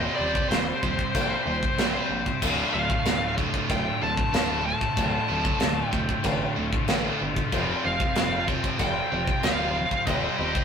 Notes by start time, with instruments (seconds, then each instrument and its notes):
Already playing: distorted electric guitar C3 G3 C4, lead electric guitar D#5
0.03 distorted electric guitar G4 C5
0.12 distorted electric guitar G4 C5, lead electric guitar D5
0.18 picked electric bass D#1, distorted electric guitar C3 G3 C4 G4 C5
0.25 distorted electric guitar G4 C5
0.33 distorted electric guitar G4 C5, kick
0.41 distorted electric guitar G4 C5
0.48 picked electric bass D#1, distorted electric guitar C3 G3 G4 C5, lead electric guitar C5, snare, china
0.58 distorted electric guitar G4 C5
0.64 distorted electric guitar G4 C5
0.72 distorted electric guitar G4 C5
0.81 picked electric bass D#1, distorted electric guitar C3 G3 G4 C5, kick
0.88 distorted electric guitar G4 C5
0.96 distorted electric guitar G4 C5, kick
1.03 distorted electric guitar G4 C5
1.11 picked electric bass A#1, distorted electric guitar G4 C5, kick, china
1.15 distorted electric guitar C3 G3
1.19 distorted electric guitar G4 C5
1.27 distorted electric guitar G4 C5
1.34 distorted electric guitar G4 C5
1.42 picked electric bass D#1, distorted electric guitar G4 C5
1.47 distorted electric guitar C3 G3 G4 C5
1.57 distorted electric guitar G4 C5
1.63 distorted electric guitar G4 C5, kick
1.73 distorted electric guitar G4 C5
1.78 picked electric bass A#1, distorted electric guitar C3 G3 C4 G4 C5, snare, china
1.88 distorted electric guitar G4 C5
1.96 distorted electric guitar G4 C5
2.04 distorted electric guitar G4 C5
2.09 picked electric bass A#1, distorted electric guitar C3 G3 G4 C5
2.19 distorted electric guitar G4 C5
2.26 distorted electric guitar G4 C5, kick
2.34 distorted electric guitar G4 C5
2.42 picked electric bass D1, distorted electric guitar D2 A2 D3 A3 F4, kick, china, crash
2.49 distorted electric guitar A3 F4
2.57 distorted electric guitar A3 F4
2.65 distorted electric guitar A3 F4
2.73 picked electric bass D1, distorted electric guitar D2 A2 A3 F4, lead electric guitar F5
2.80 distorted electric guitar A3 F4
2.88 distorted electric guitar A3 F4, kick
2.95 distorted electric guitar A3 F4
3.03 picked electric bass D1, distorted electric guitar D2 A2 A3 F4, snare, china
3.11 distorted electric guitar A3 F4
3.18 distorted electric guitar A3 F4
3.26 distorted electric guitar A3 F4
3.34 distorted electric guitar D2 A3 F4, kick
3.38 distorted electric guitar A2 D3 A3 F4
3.49 distorted electric guitar A3 F4
3.54 distorted electric guitar A3, kick
3.58 distorted electric guitar F4
3.65 distorted electric guitar A3 F4
3.69 picked electric bass D1, distorted electric guitar D2 A2 A3 F4, lead electric guitar G5, kick, china
3.80 distorted electric guitar A3 F4
3.87 distorted electric guitar A3 F4
3.94 distorted electric guitar A3 F4
4.02 picked electric bass D1, distorted electric guitar D2 A2 A3 F4, lead electric guitar A5
4.11 distorted electric guitar A3 F4
4.17 distorted electric guitar A3 F4, kick
4.27 distorted electric guitar A3 F4
4.33 picked electric bass D1, distorted electric guitar D2 A2 D3 A3 F4, snare, china
4.41 distorted electric guitar A3 F4
4.49 distorted electric guitar A3 F4
4.57 distorted electric guitar A3 F4
4.64 distorted electric guitar D2 A2 A3 F4, lead electric guitar A5
4.73 distorted electric guitar A3 F4
4.80 distorted electric guitar A3 F4, kick
4.88 distorted electric guitar A3 F4
4.96 picked electric bass D1, distorted electric guitar D2 A2 D3 A3 F4, kick, china
5.04 distorted electric guitar A3 F4
5.12 distorted electric guitar A3 F4
5.20 distorted electric guitar A3 F4
5.26 picked electric bass D1, distorted electric guitar D2 A2 D3 A3 F4
5.36 distorted electric guitar A3 F4
5.43 distorted electric guitar A3 F4, kick
5.51 distorted electric guitar A3 F4
5.58 picked electric bass D1, distorted electric guitar D2 A2 A3 F4, snare, china
5.66 distorted electric guitar A3 F4
5.74 distorted electric guitar A3 F4
5.81 distorted electric guitar A3 F4
5.88 distorted electric guitar D2 A3 F4, lead electric guitar G5
5.92 picked electric bass D1, distorted electric guitar A2, kick
5.97 distorted electric guitar A3 F4
6.05 distorted electric guitar A3 F4
6.09 kick
6.13 distorted electric guitar A3 F4
6.21 picked electric bass A1, distorted electric guitar D2 A2 A3 F4, kick, china
6.28 distorted electric guitar A3 F4
6.34 distorted electric guitar A3 F4
6.44 distorted electric guitar A3 F4
6.51 distorted electric guitar A3 F4
6.56 picked electric bass D1, distorted electric guitar D2 A2 A3 F4
6.67 distorted electric guitar A3 F4
6.73 distorted electric guitar A3 F4, kick
6.82 distorted electric guitar A3 F4
6.88 picked electric bass A1, distorted electric guitar D2 A2 D3 A3 F4, snare, china
6.98 distorted electric guitar A3 F4
7.05 distorted electric guitar A3 F4
7.13 distorted electric guitar A3 F4
7.21 picked electric bass G1, distorted electric guitar D2 A2 A3 F4
7.29 distorted electric guitar A3 F4
7.36 distorted electric guitar A3 F4, kick
7.44 distorted electric guitar A3 F4
7.52 picked electric bass F1, distorted electric guitar F2 C3 F3 C4 F4, kick, china
7.60 distorted electric guitar C4 F4
7.69 distorted electric guitar C4 F4
7.76 distorted electric guitar C4 F4
7.84 picked electric bass F1, distorted electric guitar F2 C3 C4 F4, lead electric guitar F5
7.92 distorted electric guitar C4 F4
8.00 distorted electric guitar C4 F4, kick
8.08 distorted electric guitar C4 F4
8.15 picked electric bass F1, distorted electric guitar F2 C3 C4 F4, snare, china
8.22 distorted electric guitar C4 F4
8.30 distorted electric guitar C4 F4
8.38 distorted electric guitar C4 F4
8.45 distorted electric guitar F2 C3 F3 C4 F4, kick
8.54 distorted electric guitar C4 F4
8.62 distorted electric guitar C4 F4, kick
8.69 distorted electric guitar C4 F4
8.77 picked electric bass F1, distorted electric guitar F2 C3 C4 F4, lead electric guitar G5, kick, china
8.84 distorted electric guitar C4 F4
8.91 distorted electric guitar C4 F4
9.00 distorted electric guitar C4 F4
9.07 distorted electric guitar C4 F4
9.12 picked electric bass F1, distorted electric guitar F2 C3
9.16 distorted electric guitar C4 F4
9.23 distorted electric guitar C4 F4
9.27 distorted electric guitar C4 F4, kick
9.39 distorted electric guitar C4 F4
9.43 picked electric bass D1, distorted electric guitar F2 C3 F3 C4, lead electric guitar F5, snare, china
9.47 distorted electric guitar F4
9.55 distorted electric guitar C4 F4
9.62 distorted electric guitar C4 F4
9.70 distorted electric guitar C4 F4
9.75 distorted electric guitar F2 C3 C4 F4
9.86 distorted electric guitar C4 F4
9.91 distorted electric guitar C4 F4, kick
10.01 distorted electric guitar C4 F4
10.07 picked electric bass D#1, distorted electric guitar C3 G3 C4 G4 C5, lead electric guitar D#5, kick, china
10.15 distorted electric guitar G4 C5
10.24 distorted electric guitar G4 C5
10.31 distorted electric guitar G4 C5
10.37 picked electric bass D#1, distorted electric guitar C3 G3 C4 G4 C5
10.45 distorted electric guitar G4 C5
10.54 distorted electric guitar G4 C5, kick
10.60 distorted electric guitar G4